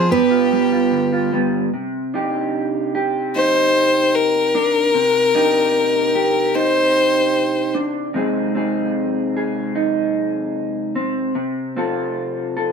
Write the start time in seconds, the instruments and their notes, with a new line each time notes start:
Already playing: clean electric guitar F3, violin G#4, steel-string acoustic guitar C5
0.10 clean electric guitar G2 B3, violin G4, steel-string acoustic guitar B4
0.31 clean electric guitar F4
0.52 clean electric guitar G3
0.72 clean electric guitar F4
0.91 clean electric guitar D3
1.12 clean electric guitar F4
1.32 clean electric guitar G3 B3
1.74 clean electric guitar C3
2.14 clean electric guitar D4 D#4 G4
2.95 clean electric guitar G4
3.35 clean electric guitar D#4, violin C5
4.15 violin A#4
4.55 clean electric guitar D4
4.94 clean electric guitar C3
5.35 clean electric guitar D4 D#4 G4
6.15 clean electric guitar G4
6.55 clean electric guitar D#4, violin C5
7.75 clean electric guitar D4
8.14 clean electric guitar C3 G#3 C4 D#4 G#4
8.55 clean electric guitar C4 D#4 G#4
9.37 clean electric guitar G#4
9.75 clean electric guitar D#4
10.95 clean electric guitar C4
11.35 clean electric guitar C3
11.76 clean electric guitar C4 F4 A4
12.57 clean electric guitar A4